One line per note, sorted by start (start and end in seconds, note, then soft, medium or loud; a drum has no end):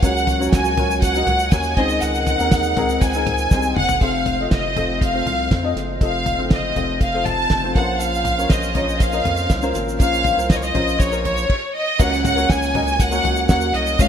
0.00 0.49 C#2 medium
0.00 0.74 C#3 medium
0.00 1.75 F#3 medium
0.00 1.49 F#3 medium
0.00 1.74 A#3 medium
0.00 1.74 C#4 medium
0.00 0.31 C#4 medium
0.00 0.31 F#4 medium
0.00 1.49 F#4 loud
0.00 0.31 A#4 medium
0.00 0.31 C#5 medium
0.00 0.49 F#5 medium
0.00 kick loud
0.00 closed hi-hat medium
0.00 shaker medium
0.17 shaker medium
0.27 closed hi-hat medium
0.27 floor tom medium
0.27 shaker soft
0.39 0.68 C#4 medium
0.39 0.68 F#4 medium
0.39 0.68 A#4 medium
0.39 0.69 C#5 medium
0.39 shaker soft
0.52 1.24 C#2 medium
0.52 0.99 G#5 medium
0.52 kick loud
0.52 snare loud
0.52 closed hi-hat medium
0.52 shaker medium
0.65 shaker medium
0.77 1.05 C#4 medium
0.77 1.06 F#4 medium
0.77 1.06 A#4 medium
0.77 1.06 C#5 medium
0.77 closed hi-hat medium
0.77 floor tom medium
0.91 shaker soft
1.02 1.53 F#5 loud
1.02 kick loud
1.02 closed hi-hat loud
1.02 shaker medium
1.15 1.43 C#4 medium
1.15 1.43 F#4 medium
1.15 1.44 A#4 medium
1.15 1.44 D#5 medium
1.15 shaker medium
1.27 1.50 C#2 medium
1.27 closed hi-hat medium
1.27 floor tom medium
1.39 shaker soft
1.51 1.75 D#2 medium
1.51 1.77 C#4 medium
1.51 1.77 F#4 medium
1.51 1.77 A#4 medium
1.51 1.78 C#5 medium
1.51 1.77 G#5 medium
1.51 kick loud
1.51 snare loud
1.51 closed hi-hat medium
1.51 shaker medium
1.63 shaker soft
1.76 2.00 C#2 medium
1.76 2.48 C#3 medium
1.76 3.23 D#3 medium
1.76 3.99 D#3 medium
1.76 4.00 G#3 medium
1.76 2.27 C4 medium
1.76 4.00 C4 medium
1.76 3.23 D#4 medium
1.76 2.27 D#4 medium
1.76 2.27 G#4 medium
1.76 2.27 C5 medium
1.76 2.02 D#5 medium
1.76 kick loud
1.76 closed hi-hat medium
1.89 shaker soft
2.02 2.37 C#2 medium
2.02 3.01 F#5 medium
2.02 closed hi-hat medium
2.02 shaker medium
2.15 shaker medium
2.27 closed hi-hat medium
2.27 floor tom medium
2.27 shaker soft
2.39 2.74 D#2 medium
2.39 2.68 C4 medium
2.39 2.68 D#4 medium
2.39 2.68 G#4 medium
2.39 2.68 A#4 medium
2.39 shaker soft
2.51 kick loud
2.51 snare loud
2.51 closed hi-hat medium
2.51 shaker medium
2.63 shaker medium
2.76 2.99 C#2 loud
2.76 3.05 C4 medium
2.76 3.05 D#4 medium
2.76 3.05 G#4 medium
2.76 3.06 A#4 loud
2.76 closed hi-hat medium
2.76 floor tom medium
2.89 shaker soft
3.01 3.48 C#2 loud
3.01 3.77 G#5 medium
3.01 kick loud
3.01 closed hi-hat loud
3.01 shaker medium
3.13 3.43 C4 medium
3.13 3.43 D#4 medium
3.13 3.43 G#4 medium
3.13 3.43 A#4 medium
3.13 shaker medium
3.27 closed hi-hat medium
3.27 floor tom medium
3.38 shaker soft
3.51 3.74 C2 medium
3.51 3.76 C3 medium
3.51 3.89 C4 medium
3.51 3.76 C4 medium
3.51 3.90 D#4 medium
3.51 3.90 G#4 medium
3.51 3.90 C5 medium
3.51 kick loud
3.51 snare medium
3.51 shaker medium
3.62 shaker soft
3.76 3.99 F#1 medium
3.76 4.00 F#5 loud
3.76 mid tom medium
3.89 floor tom medium
3.89 shaker medium
4.01 4.47 F1 medium
4.01 4.73 C3 medium
4.01 11.46 F3 medium
4.01 7.71 A3 medium
4.01 4.30 C4 medium
4.01 4.30 F4 medium
4.01 4.30 A4 medium
4.01 11.46 C5 medium
4.01 4.30 C5 medium
4.01 4.49 F5 medium
4.01 kick medium
4.01 closed hi-hat medium
4.26 closed hi-hat medium
4.26 floor tom medium
4.39 4.67 C4 medium
4.39 4.67 F4 medium
4.39 4.68 A4 medium
4.39 4.68 D#5 medium
4.51 5.22 F1 loud
4.51 4.98 D#5 medium
4.51 kick medium
4.51 snare loud
4.51 closed hi-hat medium
4.76 5.04 C4 medium
4.76 5.05 F4 medium
4.76 5.05 A4 medium
4.76 5.05 C5 medium
4.76 closed hi-hat medium
4.76 floor tom medium
5.01 5.77 F5 medium
5.01 kick loud
5.01 closed hi-hat medium
5.13 5.51 C4 medium
5.13 5.51 F4 medium
5.13 5.52 A4 medium
5.13 5.52 C5 medium
5.26 5.49 C2 medium
5.26 closed hi-hat medium
5.26 floor tom medium
5.51 5.74 F2 medium
5.51 kick medium
5.51 snare loud
5.51 closed hi-hat medium
5.63 5.92 C4 medium
5.63 5.92 F4 medium
5.63 5.92 A4 medium
5.63 5.92 D#5 medium
5.76 5.99 F#1 medium
5.76 snare soft
5.76 closed hi-hat medium
6.01 6.36 F1 loud
6.01 6.72 C3 medium
6.01 6.29 C4 medium
6.01 6.29 F4 medium
6.01 6.30 A4 medium
6.01 6.30 D#5 medium
6.01 6.49 F5 medium
6.01 kick medium
6.01 closed hi-hat medium
6.26 closed hi-hat medium
6.26 floor tom medium
6.38 6.73 F#1 medium
6.38 6.66 C4 medium
6.38 6.67 F4 medium
6.38 6.67 A4 medium
6.38 6.67 C5 medium
6.50 6.98 D#5 medium
6.50 kick loud
6.50 snare loud
6.50 closed hi-hat medium
6.75 6.99 F1 medium
6.75 7.04 C4 medium
6.75 7.04 F4 medium
6.75 7.05 A4 medium
6.75 7.05 D#5 medium
6.75 closed hi-hat medium
6.75 floor tom medium
7.01 7.47 F1 medium
7.01 7.26 F5 medium
7.01 kick loud
7.01 closed hi-hat medium
7.13 7.51 C4 medium
7.13 7.51 F4 medium
7.13 7.52 A4 medium
7.13 7.52 C5 medium
7.26 7.76 A5 loud
7.26 closed hi-hat medium
7.26 floor tom medium
7.50 7.74 F1 medium
7.50 kick medium
7.50 snare loud
7.50 closed hi-hat medium
7.63 7.76 C4 medium
7.63 7.75 F4 medium
7.63 7.76 A4 medium
7.63 7.76 C5 medium
7.75 8.46 A#1 medium
7.75 8.47 A#2 medium
7.75 8.47 F3 medium
7.75 11.46 A#3 medium
7.75 11.46 C#4 medium
7.75 8.26 C#4 medium
7.75 11.46 F4 medium
7.75 8.26 F4 medium
7.75 8.26 A#4 medium
7.75 7.82 B4 medium
7.75 7.99 F#5 medium
7.75 kick loud
7.75 snare soft
7.75 closed hi-hat medium
7.83 8.29 C5 medium
8.00 8.50 F5 medium
8.00 closed hi-hat medium
8.00 shaker medium
8.15 shaker soft
8.25 closed hi-hat medium
8.25 floor tom medium
8.25 shaker soft
8.38 8.66 C#4 medium
8.38 8.67 F4 medium
8.38 8.67 A#4 medium
8.38 8.67 C#5 medium
8.38 shaker soft
8.50 9.22 A#1 loud
8.50 9.00 D#5 medium
8.50 kick medium
8.50 snare loud
8.50 closed hi-hat medium
8.50 shaker medium
8.63 shaker soft
8.75 9.03 C#4 medium
8.75 9.04 F4 medium
8.75 9.04 A#4 medium
8.75 9.04 C#5 medium
8.75 closed hi-hat medium
8.75 floor tom medium
8.89 shaker soft
9.00 9.75 F5 medium
9.00 kick loud
9.00 closed hi-hat medium
9.00 shaker medium
9.12 9.50 C#4 medium
9.12 9.51 F4 medium
9.12 9.51 A#4 medium
9.12 9.51 D#5 medium
9.12 shaker soft
9.25 9.48 F2 medium
9.25 closed hi-hat medium
9.25 floor tom medium
9.37 shaker soft
9.50 9.73 C2 loud
9.50 kick medium
9.50 snare loud
9.50 closed hi-hat medium
9.50 shaker medium
9.62 9.91 C#4 medium
9.62 9.91 F4 medium
9.62 9.91 A#4 medium
9.62 9.91 C5 medium
9.62 shaker soft
9.75 9.98 G#1 medium
9.75 10.47 A#2 medium
9.75 10.46 F3 medium
9.75 closed hi-hat medium
9.75 shaker soft
9.89 shaker soft
10.00 10.35 A#1 loud
10.00 10.28 C#4 medium
10.00 10.29 F4 medium
10.00 10.29 A#4 medium
10.00 10.29 C#5 medium
10.00 10.47 F5 medium
10.00 kick loud
10.00 closed hi-hat medium
10.00 shaker medium
10.14 shaker soft
10.24 closed hi-hat medium
10.24 floor tom medium
10.24 shaker soft
10.37 10.72 C2 medium
10.37 10.66 C#4 medium
10.37 10.66 F4 medium
10.37 10.66 A#4 medium
10.37 10.66 C5 medium
10.37 shaker soft
10.50 10.57 D#5 medium
10.50 kick medium
10.50 snare loud
10.50 closed hi-hat medium
10.50 shaker medium
10.56 10.64 C#5 medium
10.63 11.00 D#5 medium
10.63 shaker soft
10.74 10.98 A#1 medium
10.74 11.03 C#4 medium
10.74 11.03 F4 medium
10.74 11.03 A#4 medium
10.74 11.03 C5 medium
10.74 closed hi-hat medium
10.74 floor tom medium
10.88 shaker soft
10.99 11.46 A#1 loud
10.99 11.24 C#5 medium
10.99 kick loud
10.99 closed hi-hat medium
10.99 shaker medium
11.11 11.49 C#4 medium
11.11 11.49 F4 medium
11.11 11.50 A#4 medium
11.11 11.50 C5 medium
11.11 shaker soft
11.25 11.72 C#5 medium
11.25 closed hi-hat medium
11.25 floor tom medium
11.37 shaker soft
11.50 kick medium
11.50 crash medium
11.76 11.98 D#5 medium
11.99 12.46 C#2 loud
11.99 12.97 C#3 medium
11.99 12.71 C#3 medium
11.99 13.97 F#3 medium
11.99 12.28 A#3 medium
11.99 13.97 A#3 medium
11.99 14.08 C#4 medium
11.99 12.97 C#4 medium
11.99 12.28 C#4 medium
11.99 12.28 F#4 medium
11.99 12.28 A#4 medium
11.99 12.28 C#5 medium
11.99 12.25 F#5 medium
11.99 kick loud
11.99 crash medium
11.99 shaker medium
12.14 shaker soft
12.25 12.49 F#5 loud
12.25 closed hi-hat medium
12.25 floor tom medium
12.25 shaker soft
12.36 12.65 A#3 medium
12.36 12.65 C#4 medium
12.36 12.65 F#4 medium
12.36 12.65 A#4 medium
12.36 12.66 C#5 medium
12.36 shaker medium
12.50 13.21 C#2 loud
12.50 13.00 G#5 medium
12.50 kick loud
12.50 snare loud
12.50 closed hi-hat loud
12.50 shaker medium
12.62 shaker medium
12.73 13.02 A#3 medium
12.73 13.02 C#4 medium
12.73 13.03 F#4 medium
12.73 13.03 A#4 medium
12.73 13.03 D#5 medium
12.73 closed hi-hat medium
12.73 floor tom medium
12.88 shaker soft
13.00 13.49 F#5 loud
13.00 kick loud
13.00 closed hi-hat loud
13.00 shaker medium
13.11 13.39 A#3 medium
13.11 13.40 C#4 medium
13.11 13.40 F#4 medium
13.11 13.40 A#4 medium
13.11 13.40 C#5 medium
13.11 shaker medium
13.24 13.47 C#2 medium
13.24 13.73 F#3 medium
13.24 13.73 F#4 medium
13.24 closed hi-hat medium
13.24 floor tom medium
13.36 shaker soft
13.49 13.72 D#2 medium
13.49 13.87 A#3 medium
13.49 13.87 C#4 medium
13.49 13.87 F#4 medium
13.49 13.87 A#4 medium
13.49 13.87 C#5 medium
13.49 13.73 F#5 medium
13.49 kick loud
13.49 snare loud
13.49 closed hi-hat medium
13.49 shaker medium
13.61 shaker soft
13.74 13.97 C2 medium
13.74 14.00 D#5 medium
13.74 closed hi-hat medium
13.87 shaker soft
13.98 14.08 C#2 loud
13.98 14.08 G#2 medium
13.98 14.08 F3 medium
13.98 14.08 G#3 medium
13.98 14.08 C#4 medium
13.98 14.08 F4 medium
13.98 14.08 F4 loud
13.98 14.08 G#4 medium
13.98 14.08 C#5 medium
13.98 14.08 F5 medium
13.98 kick loud
13.98 closed hi-hat medium
13.98 shaker medium